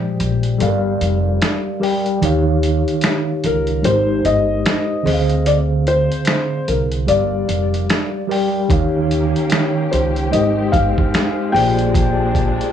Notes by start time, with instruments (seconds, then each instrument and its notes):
Already playing: tine electric piano A#2 F3 G#3 C5 D5 G5, felt piano G4
0.20 upright bass A#1, closed hi-hat
0.43 closed hi-hat
0.58 upright bass G1, tine electric piano G3 G4 A4 D5, closed hi-hat
0.62 tine electric piano F5
0.66 tine electric piano A#4
1.01 upright bass F1, closed hi-hat
1.42 finger snap, snare, closed hi-hat
1.80 tine electric piano G3 G4 A#4 D5 G5, open hi-hat
2.06 closed hi-hat
2.21 upright bass D#2, tine electric piano D#3 D#4 G4 C#5, closed hi-hat
2.25 tine electric piano F5
2.63 closed hi-hat
2.88 closed hi-hat
3.01 finger snap, snare, closed hi-hat
3.44 upright bass C#2, felt piano A#4, closed hi-hat
3.67 closed hi-hat
3.82 upright bass G#1, tine electric piano G#3 D#4 G4 A#4 C5, felt piano C5, closed hi-hat
4.25 upright bass G1, felt piano D#5, closed hi-hat
4.66 finger snap, snare, closed hi-hat
5.03 upright bass D2, tine electric piano D3 C4 G#4 C5 D#5
5.07 open hi-hat
5.13 tine electric piano F5
5.30 closed hi-hat
5.46 felt piano D5, closed hi-hat
5.87 felt piano C5, closed hi-hat
6.12 closed hi-hat
6.25 finger snap, snare, closed hi-hat
6.68 upright bass C2, felt piano A#4, closed hi-hat
6.92 closed hi-hat
7.06 upright bass G1, tine electric piano G3 G4 A#4 D5 F5, felt piano D5, closed hi-hat
7.48 upright bass F1, closed hi-hat
7.74 closed hi-hat
7.90 finger snap, snare, closed hi-hat
8.27 tine electric piano G3 G4 A#4 D5, open hi-hat
8.31 tine electric piano G5
8.68 upright bass D#2, tine electric piano D#3 D#4 G4 C#5 F5, string section D#3 A#3 C#4 G4, kick, closed hi-hat
9.11 closed hi-hat
9.36 closed hi-hat
9.50 finger snap, snare, closed hi-hat
9.92 upright bass C#2, felt piano C5, closed hi-hat
10.16 closed hi-hat
10.31 upright bass G#1, tine electric piano G#3 D#4 G4 A#4 C5, string section G#3 C4, felt piano D#5, closed hi-hat
10.72 upright bass G1, felt piano F5, kick, closed hi-hat
10.98 kick
11.14 finger snap, snare, closed hi-hat
11.52 upright bass A#1, tine electric piano A#3 F4 G4 G#4 C5 D5, string section A#3 D4, felt piano G5, open hi-hat
11.79 closed hi-hat
11.95 kick, closed hi-hat
12.35 kick, closed hi-hat
12.61 closed hi-hat